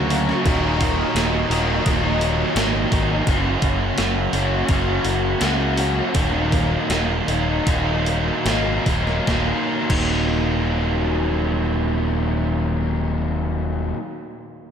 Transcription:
Already playing: D2 F#2 C#3 F#3 A#3 C#4 F#4 F5 A#5 C#6
0.09 F#3 A#3 C#4 F#4, open hi-hat
0.29 snare
0.44 D#1 D#2 A#2 D#3 F#3 A#3 D#4 D#5, kick, open hi-hat
0.49 D#3
0.81 kick, open hi-hat
1.15 D#1 D#3 F#3 A#3 D#4, snare, open hi-hat
1.50 D#1 D#2 A#2 D#3 F#3 A#3 D#4, open hi-hat
1.85 D#1 D#2 A#2 D#3 F#3 A#3 D#4, kick, open hi-hat
2.21 open hi-hat
2.55 G#1 D#3 F#3 A#3 D#4, snare, open hi-hat
2.91 G#1 D#3 F#3 A#3 D#4, kick, open hi-hat
3.26 F#1 F#2 C#3 F#3 A#3 C#4 F#4, kick, open hi-hat
3.62 F#1, kick, open hi-hat
3.97 F#1 F#3 A#3 C#4 F#4, snare, open hi-hat
4.33 F#1 F#3 A#3 C#4 F#4, open hi-hat
4.68 F#1 F#2 C#3 F#3 A#3 C#4 F#4, kick, open hi-hat
5.05 F#1, open hi-hat
5.39 C#2 F#3 A#3 C#4 F#4, snare, open hi-hat
5.76 F#3 A#3 C#4 F#4, open hi-hat
6.14 D#1 D#2 A#2 D#3 F#3 A#3 D#4, kick, open hi-hat
6.52 kick, open hi-hat
6.90 D#1 D#3 F#3 A#3 D#4, snare, open hi-hat
7.27 D#1 D#3 F#3 A#3 D#4, open hi-hat
7.65 D#1 D#2 A#2 D#3 F#3 A#3 D#4, kick, open hi-hat
8.06 open hi-hat
8.44 G#1 D#3 F#3 A#3 D#4, snare, open hi-hat
8.85 D#1 D#3 F#3 A#3 D#4, kick, open hi-hat
9.07 snare
9.27 D#1 D#2 A#2 D#3 F#3 A#3 D#4, kick, snare
9.89 D#1 D#2 A#2 D#3 F#3 A#3 D#4, kick, crash

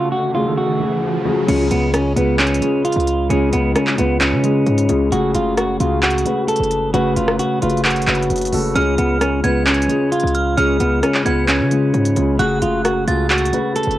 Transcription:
Already playing: C#3 A3 F#4 G#4 A4 G#5, riser
0.12 F#4
0.34 C#3 A3 F4 F#4 G#4
0.45 C#3 A3 F#4 A4
0.57 F#4
0.80 C#3 A3 F#4 G#4
1.25 C#3 A3 F#4 G#4
1.48 C#2 C#3 G#3 C#4 F4 G#4, closed hi-hat, crash
1.71 C#2 B3, closed hi-hat
1.94 C#4, cross-stick, closed hi-hat
2.16 C#2 C#3 G#3 B3 F4 B4, closed hi-hat
2.39 C#4, clap, closed hi-hat
2.47 closed hi-hat
2.54 closed hi-hat
2.61 C#3 G#3 F4 G#4, closed hi-hat
2.85 F4, closed hi-hat
2.92 C#2, closed hi-hat
3.00 closed hi-hat
3.07 closed hi-hat
3.30 C#2 C#3 G#3 C#4 F4 G#4, closed hi-hat
3.53 C#2 B3, closed hi-hat
3.76 C#4, cross-stick, closed hi-hat
3.87 clap
3.98 C#2 C#3 G#3 B3 F4 B4, closed hi-hat
4.21 C#4, clap, closed hi-hat
4.32 C#3
4.44 C#3 G#3 F4 G#4, closed hi-hat
4.67 G#2, closed hi-hat
4.78 closed hi-hat
4.89 C#2 C#3 G#3 F4 G#4, closed hi-hat
5.12 F#1 C#3 A3 F#4 G#4, closed hi-hat
5.34 F#1 F4, closed hi-hat
5.57 F#4, cross-stick, closed hi-hat
5.80 C#2 C#3 A3 F4 F#4 G#4, closed hi-hat
6.03 F#4, clap, closed hi-hat
6.11 closed hi-hat
6.18 closed hi-hat
6.25 C#3 A3 F#4 B4, closed hi-hat
6.48 A4, closed hi-hat
6.56 F#1, closed hi-hat
6.64 closed hi-hat
6.71 closed hi-hat
6.93 F#1 C#3 A3 F#4 B4, closed hi-hat
7.16 F#1 F4, closed hi-hat
7.28 cross-stick
7.39 F#4, closed hi-hat
7.62 F#1 C#3 A3 F4 F#4 B4, closed hi-hat
7.70 closed hi-hat
7.77 closed hi-hat
7.85 F#4, clap, closed hi-hat
7.90 closed hi-hat
7.96 closed hi-hat
8.02 closed hi-hat
8.07 F#1 C#3 A3 F#4 B4, clap, closed hi-hat
8.15 closed hi-hat
8.23 closed hi-hat
8.30 F#1, closed hi-hat
8.36 closed hi-hat
8.38 closed hi-hat
8.42 closed hi-hat
8.45 closed hi-hat
8.47 closed hi-hat
8.53 F#1 C#3 A3 F#4 A4, open hi-hat
8.76 C#2 C#3 G#3 C#4 F4 G#4 F6, closed hi-hat
8.98 C#2 B3, closed hi-hat
9.21 C#4, cross-stick, closed hi-hat
9.43 C#2 C#3 G#3 B3 F4 B4 G#6, closed hi-hat
9.66 C#4, clap, closed hi-hat
9.74 closed hi-hat
9.82 closed hi-hat
9.89 C#3 G#3 F4 G#4, closed hi-hat
10.12 F4, closed hi-hat
10.20 C#2, closed hi-hat
10.27 closed hi-hat
10.35 F6, closed hi-hat
10.57 C#2 C#3 G#3 C#4 F4 G#4 F6, closed hi-hat
10.80 C#2 B3, closed hi-hat
11.03 C#4, cross-stick, closed hi-hat
11.14 clap
11.25 C#2 C#3 G#3 B3 F4 B4 G#6, closed hi-hat
11.48 C#4, clap, closed hi-hat
11.60 C#3
11.71 C#3 G#3 F4 G#4, closed hi-hat
11.94 G#2, closed hi-hat
12.05 closed hi-hat
12.16 C#2 C#3 G#3 F4 G#4, closed hi-hat
12.39 F#1 C#3 A3 F#4 G#4 F#6, closed hi-hat
12.62 F#1 F4, closed hi-hat
12.85 F#4, cross-stick, closed hi-hat
13.07 C#2 C#3 A3 F4 F#4 G#4 A6, closed hi-hat
13.30 F#4, clap, closed hi-hat
13.38 closed hi-hat
13.45 closed hi-hat
13.52 C#3 A3 F#4 B4, closed hi-hat
13.76 A4, closed hi-hat
13.83 F#1, closed hi-hat
13.91 closed hi-hat

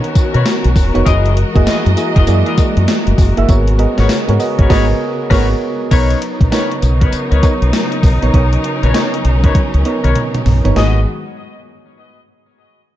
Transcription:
Already playing: D#3 B3 C#4 D#4 F#4 A#4 C#5
0.04 closed hi-hat
0.15 muted fingered electric bass stroke, kick, closed hi-hat, tambourine
0.34 B2 D#4 A#4 B4 C#5, closed hi-hat
0.46 snare, closed hi-hat, tambourine
0.64 B1, closed hi-hat
0.76 E1, kick, open hi-hat, tambourine
0.94 F1 B3 D#4 F#4 A#4 C#5, closed hi-hat
1.06 F#1 E3 G#3 E4 G#4 A#4 D#5, kick, closed hi-hat, tambourine
1.26 closed hi-hat
1.37 closed hi-hat
1.55 F#1 A#3 E4 F#4 G#4 D#5, kick, closed hi-hat
1.66 E4 G#4 A#4 D#5, muted fingered electric bass stroke, snare, closed hi-hat, tambourine
1.86 F#2, closed hi-hat
1.97 A#3 E4 F#4 G#4 D#5, closed hi-hat, tambourine
2.15 F#1 E4 G#4 A#4 D#5, kick, closed hi-hat
2.27 F#2 A#3 E4 F#4 G#4 D5, closed hi-hat, tambourine
2.35 D#5
2.46 E4 G#4 A#4 D#5, closed hi-hat
2.58 muted fingered electric bass stroke, kick, closed hi-hat, tambourine
2.77 F#2, closed hi-hat
2.88 snare, closed hi-hat, tambourine
3.07 F#1, closed hi-hat
3.18 F#1, kick, open hi-hat, tambourine
3.37 G1 A#3 E4 F#4 G#4 E5, closed hi-hat
3.48 G#1 C#3 B3 F#4 G#4 A#4 C#5, kick, closed hi-hat, tambourine
3.68 closed hi-hat
3.78 B3 F#4 G#4 A#4 D#5, closed hi-hat
3.98 G#1 F#4 A#4 B4 C#5, snare, closed hi-hat
4.09 snare, closed hi-hat, tambourine
4.28 G#2 B3 F#4 G#4 A#4 C#5, closed hi-hat
4.39 B3 F#4 G#4 A#4 D#5, open hi-hat, tambourine
4.59 G#1 F#4 A#4 B4 C#5, kick, closed hi-hat
4.69 G#1 B3 F#4 G#4 A#4 B4 C#5 D#5, kick, snare, crash
5.30 G#1 B3 F#4 G#4 A#4 B4 C#5, kick, snare, crash
5.91 B1 C#3 F#3 B3 D#4 A#4 B4 C#5, kick, closed hi-hat, crash, tambourine
6.10 closed hi-hat
6.22 closed hi-hat
6.41 A#1, kick, closed hi-hat
6.51 B3 D#4 A#4 B4 C#5, snare, closed hi-hat, tambourine
6.71 closed hi-hat
6.82 B1, closed hi-hat, tambourine
7.01 D#4 A#4 B4 C#5, kick, closed hi-hat
7.12 muted fingered electric bass stroke, closed hi-hat, tambourine
7.31 C#2 D#4 A#4 B4 C#5, closed hi-hat
7.42 B3 D#4 A#4 C#5, kick, closed hi-hat, tambourine
7.62 B1, closed hi-hat
7.73 snare, closed hi-hat, tambourine
7.92 closed hi-hat
8.03 B1, kick, open hi-hat, tambourine
8.22 A#1 B3 D#4 A#4 C#5, closed hi-hat
8.34 B1 B3 C#4 D#4 A#4 C#5, kick, closed hi-hat
8.53 closed hi-hat
8.64 closed hi-hat
8.83 A#1 D#4 A#4 B4 C#5, closed hi-hat
8.94 B3 D#4 A#4 C#5, snare, closed hi-hat
9.14 closed hi-hat
9.25 B1, closed hi-hat
9.43 D#4 A#4 B4 C#5, kick, closed hi-hat
9.55 muted fingered electric bass stroke, kick, closed hi-hat, high tom
9.74 C#2, closed hi-hat
9.85 B3 D#4 A#4 C#5, closed hi-hat
10.04 B1 D#4 A#4 B4 C#5, closed hi-hat, mid tom
10.15 closed hi-hat, mid tom
10.34 closed hi-hat, mid tom
10.46 B1, floor tom, open hi-hat
10.64 G1 B3 D#4 A#4 C#5, closed hi-hat, floor tom
10.76 G#1 D#3 F#3 G#3 B3 F#4 G#4 B4 D#5, snare, open hi-hat

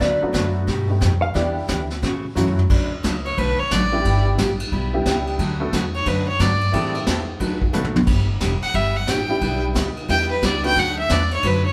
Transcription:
0.00 D2 D3 F#3 A3 D4 F#4 B4 D5, brush sweep, kick, snare
0.22 F#3 A3 B3 D4 F#4, muted upright bass stroke
0.33 F#2 D3 F#3 A3 D4 F#4 B4, kick, snare, hi-hat pedal
0.67 G2 B2 G3 A3 D#4 G4, brush sweep, kick, snare
0.88 A3 B3 D4 D#4 G4
1.01 F2 B2 G3 A3 D#4 G4, kick, snare, hi-hat pedal
1.22 F5
1.34 E2 E3 G3 B3 D4 E4 G4 D5, brush sweep, kick, snare
1.68 D2 E3 B3 D4 G4, kick, snare, hi-hat pedal
1.90 snare
2.02 A2 C#3 E3 A3 C#4 F#4, brush sweep, kick, snare
2.35 F#2 C#3 E3 F#3 A3 C#4 E4 F#4, floor tom, hi-hat pedal
2.48 floor tom
2.59 floor tom
2.69 D2 D3 F#3 A3 D4 F#4 B4, kick, crash
3.03 C#2 D3 F#3 A3 D4 F#4 B4, kick, snare, hi-hat pedal, ride
3.25 C#5, ride
3.37 B1 D3 F#3 A3 D4 F#4 B4, kick, ride
3.59 C#5, muted upright bass stroke
3.71 A1 D3 F#3 A3 D4 F#4 B4 D5, kick, snare, hi-hat pedal, ride
3.92 G3 B3 D4 E4 G4
4.05 G1 G3 B3 E4 G4, kick, ride
4.38 A1 G3 B3 E4 G4, kick, snare, hi-hat pedal, ride
4.60 ride
4.72 B1 G3 B3 E4 G4, kick
4.93 G3 B3 D4 E4 G4
5.05 C#2 G3 B3 E4 G4, kick, snare, hi-hat pedal, ride
5.27 ride
5.39 D2 D3 F#3 A3 D4 F#4 B4, kick, ride
5.60 A3 B3 D4 F#4 A4
5.72 E2 D3 F#3 A3 D4 F#4 B4, kick, snare, hi-hat pedal, ride
5.94 C#5, ride
6.05 F#2 D3 F#3 A3 D4 F#4 B4, kick, ride
6.28 C#5
6.39 G2 D3 F#3 A3 D4 F#4 B4 D5, kick, snare, hi-hat pedal, ride
6.61 ride
6.72 A2 E3 G3 A3 C4 E4 G4 A4, kick, ride
6.95 ride
7.07 E2 E3 G3 C4 E4 A4, kick, snare, hi-hat pedal, ride
7.40 D2 D3 F#3 A3 D4 F#4 B4, kick, ride
7.62 kick
7.73 B1 D3 F#3 A3 B3 D4 F#4 A4 B4, hi-hat pedal, high tom
7.84 high tom
7.96 high tom
8.06 G1 G3 B3 E4 G4, kick, crash
8.40 E1 G3 B3 E4 G4, kick, snare, hi-hat pedal, ride
8.62 F#5, muted upright bass stroke, ride
8.74 G1 G3 B3 E4 G4 E5, kick, ride
8.96 F#5
9.07 A1 G3 B3 E4 G4 G5, kick, snare, hi-hat pedal, ride
9.28 G3 B3 D4 E4 G4
9.41 B1 G3 B3 E4 G4, kick, ride
9.74 D2 G3 B3 E4 G4, kick, snare, hi-hat pedal, ride
9.97 ride
10.08 E2 G3 B3 D4 E4 G4 G5, kick, ride
10.31 B4
10.42 C#2 G3 B3 E4 G4 D5, kick, snare, hi-hat pedal, ride
10.64 A3 B3 D4 F#4 B4 G5, ride
10.76 D2 D3 F#3 A3 D4 F#4 B4 F#5, kick, ride
10.99 E5
11.09 E2 D3 F#3 A3 D4 F#4 B4 D5, kick, snare, hi-hat pedal, ride
11.31 C#5, ride
11.43 F#2 D3 F#3 A3 D4 F#4 B4, kick, ride
11.47 B4
11.66 C#5

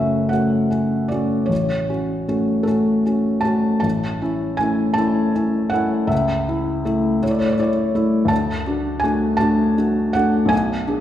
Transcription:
Already playing: F#1 A3 C#4 F#4 E5 F#5
0.29 A3 F#4 F#5
0.33 C#4
0.71 C#4 F#4
1.08 A3 C#4 F#4 D5
1.46 A1 C#5
1.89 C#4 F#4
2.28 A3 C#4 F#4
2.63 A3 A4
2.67 C#4 F#4
3.06 C#4 F#4
3.41 A3 C#4 A5
3.45 F#4
3.80 A1 A5
4.21 C#4 E4
4.57 A3 C#4 E4 G#5
4.94 A3 C#4 A5
4.98 E4
5.35 C#4 E4
5.70 A3 C#4 F#5
5.74 E4
6.07 C#2 E5
6.48 E4
6.85 A3 E4
7.23 A3 E4 C#5
7.31 D5
7.39 C#5
7.47 D5
7.52 C#5
7.59 E4 C#5 D5
7.95 A3 E4
8.25 D2 A5
8.67 D4 F#4
9.00 A3 D4 G#5
9.04 F#4
9.37 A3 D4 A5
9.41 F#4
9.78 D4 F#4
10.13 A3 D4 F#4 F#5
10.45 B1 G#5
10.87 D4 G#4

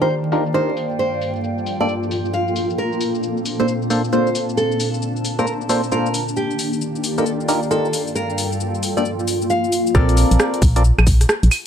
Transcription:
Already playing: D#3 A#3 D4 F4 G4 D5 F5 G5
0.01 D4 D#4 F4 G4 A#4 C5, shaker
0.10 shaker
0.24 shaker
0.32 D4 D#4 F4 G4 A#4, open hi-hat, shaker
0.46 shaker
0.54 D4 D#4 F4 G4 A#4 C5, shaker
0.69 shaker
0.77 G2 D4 F4 A4, open hi-hat, shaker
0.91 shaker
0.99 A#3 C5, shaker
1.13 shaker
1.22 open hi-hat, shaker
1.36 shaker
1.44 shaker
1.58 shaker
1.66 open hi-hat, shaker
1.80 A#3 D4 F4 G4 A4 D5, shaker
1.89 shaker
2.03 shaker
2.11 open hi-hat, shaker
2.25 shaker
2.34 F5, shaker
2.48 shaker
2.56 open hi-hat, shaker
2.70 shaker
2.78 A#2 C4 D4 A#4, shaker
2.93 shaker
3.01 open hi-hat, shaker
3.15 shaker
3.23 shaker
3.37 shaker
3.45 A5, open hi-hat, shaker
3.60 A#3 D4 F4 A4 C5, shaker
3.68 shaker
3.82 shaker
3.90 A#3 D4 F4 A4 C5, open hi-hat, shaker
4.04 shaker
4.13 A#3 D4 F4 A4 C5, shaker
4.27 shaker
4.35 open hi-hat, shaker
4.49 shaker
4.57 A4, shaker
4.72 shaker
4.80 open hi-hat, shaker
4.94 shaker
5.02 shaker
5.16 shaker
5.25 open hi-hat, shaker
5.39 A#3 D4 F4 A4 A#4 C5, shaker
5.47 shaker
5.61 shaker
5.69 A#3 D4 F4 A4 C5, open hi-hat, shaker
5.84 shaker
5.92 A#3 D4 F4 A4 A#4 C5, shaker
6.06 shaker
6.14 open hi-hat, shaker
6.28 shaker
6.37 D#3 A#3 D4 F4 G4, shaker
6.51 shaker
6.55 D5, open hi-hat, shaker
6.72 F5 G5, shaker
6.81 shaker
6.96 shaker
7.04 open hi-hat, shaker
7.18 D4 D#4 F4 G4 A4 A#4, shaker
7.26 shaker
7.40 shaker
7.48 D4 D#4 F4 G4 A#4, open hi-hat, shaker
7.63 shaker
7.71 D4 D#4 F4 G4 A4 A#4, shaker
7.85 shaker
7.93 G2 F4 A4, open hi-hat, shaker
8.08 shaker
8.15 A#3 A#4, shaker
8.30 shaker
8.38 open hi-hat, shaker
8.52 shaker
8.60 shaker
8.75 shaker
8.83 open hi-hat, shaker
8.97 A#3 D4 F4 G4 A4 D5, shaker
9.05 shaker
9.19 shaker
9.28 open hi-hat, shaker
9.42 shaker
9.50 F5, shaker
9.64 shaker
9.72 open hi-hat, shaker
9.87 shaker
9.95 A#1 C4 F4 A4 A#4 D5, kick, cross-stick, shaker
10.09 closed hi-hat, shaker
10.17 open hi-hat, shaker
10.31 A#1, closed hi-hat, shaker
10.40 cross-stick, shaker
10.54 closed hi-hat, shaker
10.62 A#1, kick, open hi-hat, shaker
10.76 C4 F4 A4 A#4 D5, closed hi-hat, shaker
10.84 shaker
10.98 A#1, cross-stick, claves, shaker
11.07 kick, open hi-hat, shaker
11.21 cross-stick, closed hi-hat, shaker
11.29 cross-stick, shaker
11.43 A#1, closed hi-hat, shaker
11.51 open hi-hat, claves, shaker

